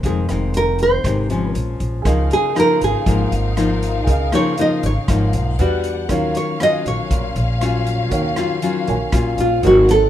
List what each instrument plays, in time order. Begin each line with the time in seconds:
0.03 upright bass F1, nylon-string guitar F2 D#3 G#3 C4 G#4, kick, closed hi-hat
0.29 upright bass F1, nylon-string guitar D#3 G#3 C4, cross-stick, closed hi-hat
0.54 nylon-string guitar A#4, closed hi-hat
0.79 nylon-string guitar C5, closed hi-hat
1.04 upright bass G#1, nylon-string guitar C3 D#3 G#3 C4, kick, cross-stick, closed hi-hat
1.30 nylon-string guitar F3 G#3 C#4, closed hi-hat
1.50 nylon-string guitar A#4
1.55 upright bass A#1, closed hi-hat
1.80 upright bass A#1, closed hi-hat
2.02 upright bass C#2, nylon-string guitar C#3 F3 A#3, grand piano G#4 A#4, string section A#4 F5, kick, cross-stick, closed hi-hat
2.06 nylon-string guitar D#4, string section D#4, grand piano D#5 F5
2.31 nylon-string guitar G#4, closed hi-hat
2.55 nylon-string guitar F3 A#3 D#4, cross-stick, closed hi-hat
2.60 nylon-string guitar A#4
2.81 upright bass G#1, nylon-string guitar G#4, closed hi-hat
3.06 upright bass G#1, nylon-string guitar G#2 F3 A#3 D#4, kick, closed hi-hat
3.32 upright bass G#1, closed hi-hat
3.57 nylon-string guitar F3 A#3 D#4, cross-stick, closed hi-hat
3.82 closed hi-hat
4.04 upright bass C#2, nylon-string guitar C#3, grand piano G#4 A#4, kick, closed hi-hat
4.08 grand piano D#5 F5
4.32 nylon-string guitar F3 A#3 D#4 C#5, cross-stick, closed hi-hat
4.57 nylon-string guitar F3 A#3 D#4 D#5, closed hi-hat
4.83 upright bass G#1, nylon-string guitar C#5, closed hi-hat
5.08 upright bass G#1, nylon-string guitar G#2 F3 A#3 D#4, kick, cross-stick, closed hi-hat
5.33 upright bass B1, closed hi-hat
5.59 upright bass E2, nylon-string guitar G3 D4 F#4, string section D4 F#5, grand piano B4 D5 F#5, closed hi-hat
5.84 closed hi-hat
6.09 upright bass D#2, nylon-string guitar D#3 F#3 C#4 F4, string section C#4 F5, grand piano A#4 C#5 F5, kick, cross-stick, closed hi-hat
6.35 nylon-string guitar C#5, closed hi-hat
6.60 nylon-string guitar F#3 C#4 F4 D#5, cross-stick, closed hi-hat
6.86 upright bass A#1, nylon-string guitar C#5, closed hi-hat
7.11 upright bass A#1, nylon-string guitar A#2, kick, closed hi-hat
7.36 upright bass A#1, closed hi-hat
7.61 nylon-string guitar F#3 C#4 F4, cross-stick, closed hi-hat
7.87 closed hi-hat
8.10 upright bass D#2, nylon-string guitar D#3, grand piano F#4 A#4 C#5 F5, kick, closed hi-hat
8.36 nylon-string guitar F#3 C#4 F4, cross-stick, closed hi-hat
8.62 nylon-string guitar F#3 C#4 F4, closed hi-hat
8.86 upright bass A#1, grand piano F#4 A#4 C#5 G#5, closed hi-hat
9.12 upright bass A#1, nylon-string guitar A#2 F#3 C#4 F4, kick, cross-stick, closed hi-hat
9.38 upright bass A#1, nylon-string guitar F4, closed hi-hat
9.62 upright bass G#1, nylon-string guitar F#3 A#3 C4, string section C4 A#4 F#5, grand piano F#4 A#4 C5 D#5, closed hi-hat
9.67 nylon-string guitar F#4
9.89 nylon-string guitar A4, closed hi-hat